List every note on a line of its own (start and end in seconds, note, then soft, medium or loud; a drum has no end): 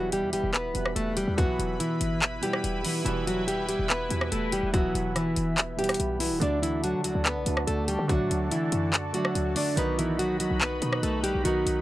0.00 0.24 E1 loud
0.00 0.47 B2 loud
0.00 0.48 E3 medium
0.00 0.10 F#3 medium
0.00 0.48 G3 loud
0.00 0.49 B3 loud
0.00 6.38 E4 medium
0.00 0.10 F#4 medium
0.00 6.38 B4 medium
0.00 6.38 E5 medium
0.00 6.38 B5 medium
0.12 0.32 G3 medium
0.12 0.31 G4 medium
0.12 closed hi-hat medium
0.23 0.35 E2 loud
0.33 0.43 E1 loud
0.33 0.52 G3 medium
0.33 0.52 G4 medium
0.33 closed hi-hat medium
0.44 0.66 E1 loud
0.53 0.94 B3 medium
0.53 0.93 B4 medium
0.53 clap loud
0.53 closed hi-hat medium
0.65 0.75 D1 loud
0.74 0.95 E1 loud
0.74 1.33 B2 medium
0.74 1.33 E3 medium
0.74 1.34 G3 medium
0.74 1.34 B3 medium
0.74 closed hi-hat medium
0.86 cross-stick loud
0.96 1.26 E1 loud
0.96 1.15 A3 medium
0.96 1.15 A4 medium
0.96 closed hi-hat medium
1.17 1.36 G3 medium
1.17 1.36 G4 medium
1.17 closed hi-hat medium
1.28 1.50 E2 loud
1.36 2.15 B2 medium
1.36 2.16 E3 medium
1.36 1.78 F#3 medium
1.36 2.17 B3 loud
1.36 1.77 F#4 loud
1.36 kick loud
1.36 closed hi-hat medium
1.49 1.59 B1 loud
1.59 1.79 E1 loud
1.59 closed hi-hat medium
1.80 2.20 E3 medium
1.80 2.19 E4 medium
1.80 closed hi-hat medium
2.01 2.41 G1 loud
2.01 closed hi-hat medium
2.22 clap loud
2.22 closed hi-hat medium
2.41 2.81 B2 medium
2.41 2.82 E3 medium
2.41 2.82 G3 medium
2.41 2.83 G3 medium
2.41 2.83 B3 medium
2.41 2.82 G4 medium
2.41 closed hi-hat medium
2.53 cross-stick loud
2.64 2.84 E1 loud
2.64 closed hi-hat medium
2.83 3.03 B2 medium
2.83 3.04 E3 medium
2.83 3.05 G3 medium
2.83 3.05 B3 medium
2.83 3.04 E4 medium
2.83 open hi-hat medium
3.04 3.76 E1 loud
3.04 3.83 B2 loud
3.04 3.84 E3 medium
3.04 3.25 E3 medium
3.04 3.84 G3 medium
3.04 3.85 B3 loud
3.04 3.24 E4 medium
3.04 closed hi-hat medium
3.27 3.46 F#3 medium
3.27 3.46 F#4 medium
3.27 closed hi-hat medium
3.48 3.67 G3 medium
3.48 3.67 G4 medium
3.48 closed hi-hat medium
3.69 3.88 G3 medium
3.69 3.88 G4 medium
3.69 closed hi-hat medium
3.79 4.10 E1 loud
3.90 4.30 B3 medium
3.90 4.29 B4 medium
3.90 clap loud
3.90 closed hi-hat medium
4.09 4.31 E2 loud
4.09 4.68 B2 medium
4.09 4.69 E3 medium
4.09 4.69 G3 medium
4.09 4.70 B3 medium
4.09 closed hi-hat medium
4.21 cross-stick loud
4.32 4.62 E1 loud
4.32 4.51 A3 medium
4.32 4.51 A4 medium
4.32 closed hi-hat medium
4.52 4.72 G3 medium
4.52 4.72 G4 medium
4.52 closed hi-hat medium
4.63 4.93 E1 loud
4.73 5.51 B2 loud
4.73 5.52 E3 medium
4.73 5.14 F#3 medium
4.73 5.53 B3 loud
4.73 5.13 F#4 loud
4.73 kick loud
4.73 closed hi-hat medium
4.95 5.35 E1 loud
4.95 closed hi-hat medium
5.15 5.55 E3 medium
5.15 5.55 E4 medium
5.15 cross-stick medium
5.15 closed hi-hat medium
5.36 5.97 E1 loud
5.36 closed hi-hat medium
5.58 clap loud
5.58 closed hi-hat medium
5.77 6.17 B2 medium
5.77 6.17 E3 medium
5.77 6.18 G3 medium
5.77 6.19 G3 medium
5.77 6.18 B3 medium
5.77 6.18 G4 medium
5.77 closed hi-hat soft
5.84 closed hi-hat medium
5.89 cross-stick loud
5.89 closed hi-hat medium
5.94 closed hi-hat medium
6.00 6.33 B1 loud
6.00 closed hi-hat medium
6.19 6.39 B2 medium
6.19 6.40 E3 medium
6.19 6.40 G3 medium
6.19 6.41 B3 medium
6.19 6.39 E4 medium
6.19 open hi-hat medium
6.31 6.41 D1 loud
6.40 6.96 D2 loud
6.40 7.19 D3 loud
6.40 7.19 F#3 medium
6.40 7.20 A3 medium
6.40 6.61 D4 medium
6.40 7.20 D4 loud
6.40 11.81 F#4 medium
6.40 9.74 A4 medium
6.40 9.74 D5 medium
6.40 6.61 D5 medium
6.40 9.74 A5 medium
6.40 closed hi-hat medium
6.63 6.82 E3 medium
6.63 6.81 E4 medium
6.63 closed hi-hat medium
6.84 7.03 F#3 medium
6.84 7.03 F#4 medium
6.84 closed hi-hat medium
6.94 7.06 D3 loud
7.04 7.14 D2 loud
7.04 7.24 F#3 medium
7.04 7.23 F#4 medium
7.04 closed hi-hat medium
7.15 7.38 D2 loud
7.25 7.65 B3 medium
7.25 7.65 B4 medium
7.25 clap loud
7.25 closed hi-hat medium
7.36 7.46 C2 loud
7.45 7.67 D2 loud
7.45 8.04 D3 medium
7.45 8.05 F#3 medium
7.45 8.05 A3 medium
7.45 8.06 D4 medium
7.45 closed hi-hat medium
7.57 cross-stick loud
7.67 7.98 D2 loud
7.67 7.87 A3 medium
7.67 7.86 A4 medium
7.67 closed hi-hat medium
7.88 8.07 G3 medium
7.88 8.07 G4 medium
7.88 closed hi-hat medium
7.99 8.21 D3 loud
8.08 8.87 D3 loud
8.08 8.87 F#3 medium
8.08 8.49 F#3 medium
8.08 8.88 A3 loud
8.08 8.88 D4 loud
8.08 8.49 F#4 loud
8.08 kick loud
8.08 closed hi-hat medium
8.20 8.30 A2 loud
8.30 8.50 D2 loud
8.30 closed hi-hat medium
8.51 8.91 E3 medium
8.51 8.91 E4 medium
8.51 closed hi-hat medium
8.72 9.13 F#2 loud
8.72 closed hi-hat medium
8.93 clap loud
8.93 closed hi-hat medium
9.13 9.53 D3 medium
9.13 9.53 F#3 medium
9.13 9.54 F#3 medium
9.13 9.54 A3 medium
9.13 9.54 D4 medium
9.13 9.54 F#4 medium
9.13 closed hi-hat medium
9.25 cross-stick loud
9.35 9.55 D2 loud
9.35 closed hi-hat medium
9.55 9.75 D3 medium
9.55 9.75 F#3 medium
9.55 9.76 A3 medium
9.55 9.75 D4 medium
9.55 9.76 D4 medium
9.55 9.76 D5 medium
9.55 open hi-hat medium
9.76 10.48 B1 loud
9.76 10.54 D#3 loud
9.76 10.55 F#3 medium
9.76 10.55 B3 medium
9.76 9.97 B3 medium
9.76 10.56 D#4 loud
9.76 11.81 B4 medium
9.76 9.96 B4 medium
9.76 11.81 D#5 medium
9.76 11.81 B5 medium
9.76 closed hi-hat medium
9.98 10.18 E3 medium
9.98 10.17 E4 medium
9.98 closed hi-hat medium
10.19 10.38 F#3 medium
10.19 10.38 F#4 medium
10.19 closed hi-hat medium
10.40 10.59 F#3 medium
10.40 10.59 F#4 medium
10.40 closed hi-hat medium
10.51 10.81 B1 loud
10.61 11.01 B3 medium
10.61 11.01 B4 medium
10.61 clap loud
10.61 closed hi-hat medium
10.80 11.02 B2 loud
10.80 11.40 D#3 medium
10.80 11.40 F#3 medium
10.80 11.41 B3 medium
10.80 11.41 D#4 medium
10.80 closed hi-hat medium
10.93 cross-stick loud
11.03 11.33 B1 loud
11.03 11.22 A3 medium
11.03 11.22 A4 medium
11.03 closed hi-hat medium
11.24 11.43 G3 medium
11.24 11.43 G4 medium
11.24 closed hi-hat medium
11.35 11.45 B1 loud
11.44 11.65 B1 loud
11.44 11.81 D#3 loud
11.44 11.81 F#3 medium
11.44 11.81 B3 medium
11.44 11.81 D#4 loud
11.44 11.81 F#4 loud
11.44 closed hi-hat medium
11.66 11.81 B1 loud
11.66 closed hi-hat medium